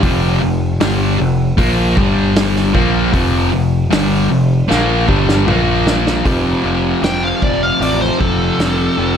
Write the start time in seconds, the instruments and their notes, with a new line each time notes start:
0.03 picked electric bass F1, distorted electric guitar F2 C3 F3, kick, open hi-hat
0.41 picked electric bass F1, distorted electric guitar F2 C3
0.80 picked electric bass G1, distorted electric guitar G2 D3 G3, snare, open hi-hat
1.19 picked electric bass F1, distorted electric guitar F2 C3
1.57 picked electric bass A#1, distorted electric guitar A#2 F3 A#3, kick, open hi-hat
1.96 picked electric bass G1, distorted electric guitar G2 D3 G3, kick
2.36 snare, open hi-hat
2.56 snare
2.74 picked electric bass A#1, distorted electric guitar A#2 F3 A#3, kick
3.12 picked electric bass F1, distorted electric guitar F2 C3 F3, kick, open hi-hat
3.51 picked electric bass F1, distorted electric guitar F2 C3
3.90 picked electric bass G1, distorted electric guitar G2 D3 G3, snare, open hi-hat
4.30 picked electric bass F1, distorted electric guitar F2 C3
4.68 picked electric bass A#1, distorted electric guitar A#2 F3 A#3, snare
5.07 picked electric bass G1, distorted electric guitar G2 D3 G3, kick
5.29 snare
5.47 picked electric bass A#1, distorted electric guitar A#2 F3 A#3, mid tom
5.87 snare
6.07 snare
6.25 picked electric bass F1, distorted electric guitar F2 C3 F3, kick, open hi-hat
6.64 picked electric bass F1, distorted electric guitar F2 C3 F3
7.03 picked electric bass F1, distorted electric guitar F2 C3 F3, lead electric guitar G5, snare, open hi-hat
7.24 lead electric guitar F5
7.42 picked electric bass F1, distorted electric guitar F2 C3 F3, lead electric guitar D5, kick
7.63 lead electric guitar F5
7.80 picked electric bass A1, distorted electric guitar F2 C3 F3, lead electric guitar D5, open hi-hat
8.01 lead electric guitar C5
8.20 picked electric bass F1, distorted electric guitar F2 C3 F3, lead electric guitar A4, kick
8.59 picked electric bass F1, distorted electric guitar F2 C3 F3, snare, open hi-hat
8.98 picked electric bass F1, distorted electric guitar F2 C3 F3